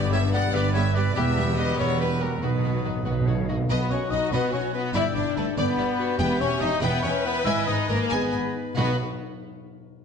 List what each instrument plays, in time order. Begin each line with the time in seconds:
Already playing: double bass section G1, cello section G2, harp G2 B4 B5, french horn section G3 B3, cor anglais G4, violin section D5, trumpet section D5
0.02 harp B3
0.12 viola section G3 B3, violin section G4 E5, harp B4, flute C#5, trumpet section E5
0.23 harp G4
0.32 viola section G3 B3, violin section G4 F#5, flute D5, trumpet section F#5, harp G5
0.43 harp B5
0.53 double bass section G1, cello section G2, viola section G3 B3, violin section G4 D5, flute B4, cor anglais B4, trumpet section D5, harp G5
0.64 harp B4
0.73 viola section G3 B3, harp G4, violin section G4 E5, flute C#5, trumpet section E5
0.85 harp B3
0.94 harp D3, viola section G3 B3, violin section G4 D5, flute B4, trumpet section D5
1.05 harp B3
1.15 double bass section E1, harp E2, cello section E2, french horn section G3 B3, viola section G3 B3, cor anglais G4, violin section G4 E5, flute B4, trumpet section E5
1.26 harp B3
1.36 viola section G3 B3, violin section G4, harp B4
1.47 harp G4
1.56 viola section G3 B3, violin section G4 D#5, flute B4, trumpet section D#5, harp G5
1.77 double bass section E1, cello section E2, viola section G3 B3, cor anglais E4, violin section G4 C#5, flute A#4, trumpet section C#5, harp G5
1.90 harp B4
1.98 viola section G3 B3, flute G4, harp G4, violin section G4 B4, trumpet section B4
2.10 harp B3
2.18 harp B2, viola section G3 B3, flute F#4, violin section G4 A#4, trumpet section A#4
2.32 harp B3
2.41 double bass section B1, timpani B2, cello section B2, harp B2, viola section D#3 B3, french horn section F#3 D#4, cor anglais D#4, flute F#4, violin section F#4 B4, trumpet section B4
2.49 timpani B2
2.53 harp D#4
2.57 timpani B2
2.63 timpani B2, viola section D#3 B3, violin section F#4, harp B4
2.73 timpani B2, harp D#5
2.81 timpani B2, viola section D#3 B3, violin section F#4, harp F#5
2.88 timpani B2
2.96 timpani B2, harp B5
3.03 double bass section B1, timpani B2, cello section B2, viola section D#3 B3, violin section F#4, clarinet B4, harp F#5
3.12 timpani B2
3.17 timpani B2, harp D#5
3.27 timpani B2, viola section D#3 B3, violin section F#4, harp B4, clarinet C#5
3.35 timpani B2, harp F#4
3.42 timpani B2
3.49 timpani B2, viola section D#3 B3, harp D#4, violin section F#4, clarinet D#5
3.57 timpani B2, harp F#3
3.69 double bass section B1, cello section B2, harp B2, french horn section B3, viola section F#4, violin section B4 D#5, trumpet section B4, clarinet D#5, cor anglais F#5, flute B5
3.89 double bass section B1, cello section B2, french horn section C#4, harp D#4, violin section C#5 D#5, trumpet section C#5, flute C#6
4.10 double bass section B1, cello section B2, french horn section D#4, harp F#4, violin section B4 D#5, trumpet section D#5, flute D#6
4.32 double bass section B1, cello section B2, french horn section B3, harp B4, trumpet section B4, violin section B4 D#5, clarinet D#5, cor anglais F#5, flute B5
4.52 double bass section B1, cello section B2, french horn section C#4, trumpet section C#5, violin section C#5 D#5, flute C#6
4.73 french horn section B3, harp D#4, violin section B4, trumpet section B4, flute B5
4.94 double bass section G1, cello section G2, harp G2, viola section E4, french horn section E4, violin section D5 E5, clarinet D5, trumpet section E5, cor anglais G5, flute E6
5.14 double bass section G1, cello section G2, french horn section D4, harp D4, violin section D5, trumpet section D5, flute D6
5.36 double bass section G1, cello section G2, french horn section A3, harp G4, violin section A4 B4, trumpet section A4, flute A5
5.56 double bass section G1, cello section G2, french horn section B3, viola section D4, violin section B4 D5, trumpet section B4, clarinet D5, cor anglais G5, flute B5
5.77 double bass section G1, cello section G2, viola section E4, harp G4, violin section D5
5.98 harp D4, viola section F#4
6.18 double bass section E1, cello section E2, harp E2, french horn section B3, viola section G4, trumpet section B4, violin section B4 G5, clarinet E5, cor anglais G5, flute B5
6.39 double bass section E1, cello section E2, french horn section C#4, trumpet section C#5, violin section C#5 G5, flute C#6
6.59 double bass section E1, cello section E2, french horn section D#4, harp G4, violin section D#5 E5, trumpet section D#5, flute D#6
6.81 double bass section E1, cello section E2, french horn section B3, viola section B4, violin section B4 G5, harp B4, trumpet section B4, clarinet E5, cor anglais G5, flute B5
7.02 double bass section E1, cello section E2, french horn section C#4, harp G4, trumpet section C#5, violin section C#5 G5, flute C#6
7.23 french horn section B3, harp E4, trumpet section B4, violin section B4, flute B5
7.44 double bass section G#1, harp G#2, cello section G#2, french horn section E4, clarinet D#5, trumpet section E5, violin section E5 G#5, cor anglais G#5, flute E6
7.66 double bass section G#1, cello section G#2, french horn section D#4, harp D#4, trumpet section D#5, violin section D#5 G#5, flute D#6
7.87 double bass section G#1, cello section G#2, french horn section A#3, harp G#4, trumpet section A#4, violin section A#4 D#5, flute A#5
8.10 double bass section G#1, cello section G#2, french horn section B3, viola section G#4, trumpet section B4, harp B4, violin section B4 G#5, clarinet D#5, cor anglais G#5, flute B5
8.32 double bass section G#1, cello section G#2, harp G#4, violin section G#5
8.56 harp D#4
8.73 harp B2 B3 D#4, clarinet D#5
8.77 double bass section B1, cello section B2, timpani B2, french horn section B3, viola section D#4, violin section F#4 B4, harp F#4, trumpet section B4, cor anglais F#5, flute B5
8.81 harp B4 F#5